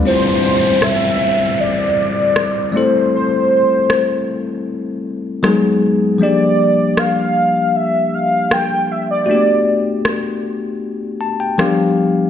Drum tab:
SD |--r---r-|--r---r-|--r---r-|--r---r-|